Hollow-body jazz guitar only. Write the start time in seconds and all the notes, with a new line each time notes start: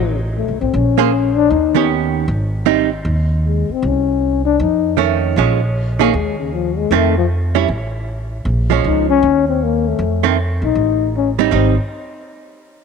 0.98 A#3 C#4 G#4 C5
1.75 D#3 B3 C#4 G4
2.66 G3 C4 D#4
4.97 D#3 A3 C#4
5.37 F3 G#3 C#4
5.99 D#3 A#3 C#4 G#4
6.92 D#3 A3 C4
7.55 G3 C#4 E4
8.70 F3 G#3 C#4
10.23 D#3 A3 C4
11.39 G3 C4 D#4
11.51 G3 C4 D#4